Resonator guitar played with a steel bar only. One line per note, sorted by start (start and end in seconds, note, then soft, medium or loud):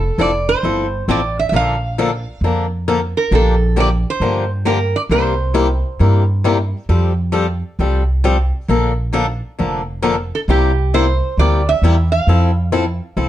0.00 0.20 A4 medium
0.21 0.49 D5 medium
0.49 1.04 C5 medium
1.11 1.36 D5 medium
1.39 1.48 E5 medium
1.49 1.53 E5 medium
1.56 2.40 F5 medium
3.17 3.31 A#4 medium
3.35 3.79 A4 medium
3.80 3.88 D5 medium
4.10 4.50 C5 medium
4.67 4.96 A#4 medium
4.96 5.01 D5 medium
5.12 6.71 C5 medium
10.35 10.40 A4 medium
10.50 10.95 G4 medium
10.94 11.39 C5 medium
11.39 11.68 D5 medium
11.69 12.11 E5 medium
12.12 13.29 F5 medium